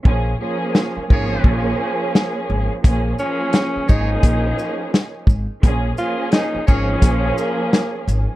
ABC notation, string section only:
X:1
M:4/4
L:1/8
Q:"Swing 16ths" 1/4=86
K:Bbm
V:1 name="String section"
[F,B,DA] [F,B,DA]2 [F,B,DA]4- [F,B,DA] | [F,B,DA] [F,B,DA]2 [F,B,DA]4 z | [F,B,DA] [F,B,DA]2 [F,B,DA]4- [F,B,DA] |]